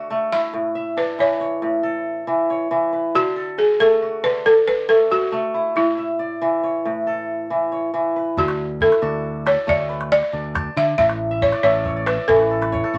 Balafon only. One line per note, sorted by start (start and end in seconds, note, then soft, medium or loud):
0.00 0.34 D5 medium
0.33 0.99 E5 medium
0.98 1.20 B4 medium
1.20 2.03 C#5 medium
3.15 3.60 F#4 medium
3.59 3.81 G#4 medium
3.80 4.25 A4 medium
4.24 4.46 B4 medium
4.46 4.68 A4 loud
4.68 4.88 B4 medium
4.89 5.11 A4 medium
5.12 5.78 F#4 medium
5.77 7.90 E4 medium
8.38 8.83 F#4 medium
8.82 9.48 A4 medium
9.47 9.57 C#5 medium
9.69 10.09 D5 medium
10.12 10.73 D5 loud
10.77 10.87 E5 medium
10.98 11.43 E5 loud
11.42 11.62 C#5 medium
11.63 12.04 C#5 medium
12.06 12.27 B4 medium
12.28 12.98 A4 medium